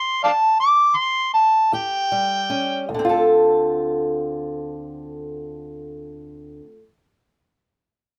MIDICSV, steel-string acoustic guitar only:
0, 0, Header, 1, 2, 480
1, 0, Start_track
1, 0, Key_signature, -1, "minor"
1, 0, Tempo, 740741
1, 1368, Tempo, 787402
1, 1842, Time_signature, 12, 3, 24, 8
1, 5069, End_track
2, 0, Start_track
2, 0, Title_t, "Steel-string acoustic guitar"
2, 0, Program_c, 0, 25
2, 1117, Note_on_c, 0, 39, 72
2, 1122, Note_on_c, 0, 67, 68
2, 1372, Note_on_c, 0, 55, 66
2, 1554, Note_off_c, 0, 39, 0
2, 1604, Note_on_c, 0, 61, 60
2, 1813, Note_off_c, 0, 61, 0
2, 1814, Note_off_c, 0, 67, 0
2, 1841, Note_on_c, 0, 38, 76
2, 1844, Note_off_c, 0, 55, 0
2, 1876, Note_on_c, 0, 50, 67
2, 1904, Note_on_c, 0, 60, 65
2, 1938, Note_on_c, 0, 65, 62
2, 1967, Note_on_c, 0, 69, 62
2, 4108, Note_off_c, 0, 38, 0
2, 4143, Note_off_c, 0, 50, 0
2, 4171, Note_off_c, 0, 60, 0
2, 4205, Note_off_c, 0, 65, 0
2, 4234, Note_off_c, 0, 69, 0
2, 5069, End_track
0, 0, End_of_file